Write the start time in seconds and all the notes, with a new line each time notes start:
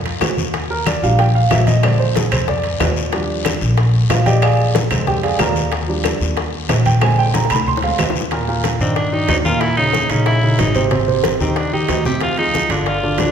Already playing: F2
0.05 high bongo, high conga, high timbale
0.20 D#2, high bongo, low bongo, high conga, high timbale, low timbale, short guiro, claves
0.38 high conga, short guiro
0.54 high bongo, high conga, high timbale, long guiro
0.70 A#4, high conga
0.86 D5, high bongo, high conga, high timbale, low timbale, short guiro, claves
1.02 A#1 F3 G3 D4 F5, high conga, short guiro
1.19 G5, high bongo, high conga, high timbale, long guiro
1.35 F5, high conga
1.50 A#1 E5, high bongo, low bongo, high conga, high timbale, low timbale, short guiro, claves
1.67 D#5, high conga, high timbale, short guiro
1.83 D3 G#3 C4 D5, high bongo, high conga, high timbale, long guiro, claves
2.00 C5, high bongo, high conga
2.15 G#4, high bongo, high conga, high timbale, low timbale, short guiro
2.31 F2 C5, high bongo, high conga, low conga, high timbale, short guiro, claves
2.48 D5, high bongo, high conga, low conga, long guiro
2.64 high bongo, high conga, high timbale
2.80 D#2, high bongo, low bongo, high conga, high timbale, low timbale, short guiro, claves
2.96 short guiro
3.13 F3 G3 D4, high bongo, high conga, high timbale, long guiro
3.30 high conga
3.45 high bongo, high conga, high timbale, low timbale, short guiro, claves
3.61 A#1, high conga, short guiro
3.77 high bongo, high conga, high timbale, long guiro
3.94 high conga
4.10 A#1 F4 F5, high bongo, low bongo, high conga, high timbale, low timbale, short guiro, claves
4.26 G4 D5 D#5 G5, high conga, high timbale, short guiro
4.42 G#4 D5 F5 G#5, high bongo, high conga, high timbale, long guiro, claves
4.59 high bongo, high conga
4.75 high bongo, high conga, high timbale, low timbale, short guiro
4.90 F2 D3 G#3 C4, high bongo, high conga, low conga, high timbale, short guiro, claves
5.07 G4 G5, high bongo, high conga, low conga, long guiro
5.23 G#4 D5 F5 G#5, high bongo, high conga, high timbale
5.38 D#2 A#4 D5 F5 A#5, high bongo, low bongo, high conga, high timbale, low timbale, short guiro, claves
5.56 short guiro
5.72 high bongo, high conga, high timbale, long guiro
5.88 F3 G3 D4, high conga
6.04 high bongo, high conga, high timbale, low timbale, short guiro, claves
6.20 D#2, high conga, short guiro
6.37 high bongo, high conga, high timbale, long guiro
6.54 high conga
6.68 A#1, high bongo, low bongo, high conga, high timbale, low timbale, short guiro, claves
6.86 G5, high conga, high timbale, short guiro
7.01 D3 G#3 C4 G#5, high bongo, high conga, high timbale, long guiro, claves
7.18 G5, high bongo, high conga
7.34 A#5, high bongo, high conga, high timbale, low timbale, short guiro
7.45 high bongo
7.50 D2 B5, high conga, low conga, high timbale, short guiro, claves
7.56 high bongo
7.66 C6, high conga, low conga, long guiro
7.77 low bongo
7.82 D3 G#3 C4 F5, high conga, high timbale
7.99 D#2, high conga, high timbale, low timbale, short guiro, claves
8.10 low bongo
8.16 short guiro
8.21 low bongo
8.31 A#2 A#3 A#4, high bongo, high conga, high timbale, long guiro
8.48 A#2 A#3 A#4, high bongo, high conga
8.64 high bongo, high conga, high timbale, low timbale, short guiro
8.79 G2 D#3 C4 D4 D#4, high conga, short guiro
8.96 D4, high bongo, high conga, high timbale, long guiro
9.13 D#3 D4 D#4, high bongo, high conga
9.28 D#2 D#4, high bongo, low bongo, high conga, high timbale, low timbale, short guiro
9.45 A#2 A#3 F4 A#4, high bongo, high conga, short guiro
9.61 E4, high bongo, high conga, high timbale, long guiro
9.77 C#3 C#4 D#4, high bongo, high conga, high timbale
9.93 high bongo, high conga, low timbale, short guiro
10.10 A#1 C#3 C#4 D#4, high timbale, short guiro
10.26 E4, high bongo, high conga, high timbale, long guiro
10.42 C#3 C#4 D#4, high bongo, high conga
10.58 G#1 D#4, high bongo, low bongo, high conga, high timbale, low timbale, short guiro
10.75 C3 C4 C5, high bongo, high conga, high timbale, short guiro
10.91 C3 C4 C5, high bongo, high conga, high timbale, long guiro
11.07 C3 C4 C5, high bongo, high conga
11.23 high bongo, high conga, high timbale, low timbale, short guiro
11.40 D#2 D#3 C4 D#4 G4, high conga, short guiro
11.56 D4, high bongo, high conga, high timbale, long guiro
11.73 D#3 D#4 G4, high bongo, high conga
11.88 D2, high bongo, low bongo, high conga, high timbale, low timbale, short guiro
12.05 C3 C4 G4 C5, high bongo, high conga, short guiro
12.21 F4, high bongo, high conga, high timbale, long guiro
12.37 F3 D#4 F4 G#4, high bongo, high conga, high timbale
12.54 high bongo, high conga, low timbale, short guiro
12.69 G1 D3 D4 F4, high timbale, short guiro
12.86 F4, high bongo, high conga, high timbale, long guiro
13.03 D3 D4 F4, high bongo, high conga
13.18 C2 D4, high bongo, low bongo, high conga, high timbale, low timbale, short guiro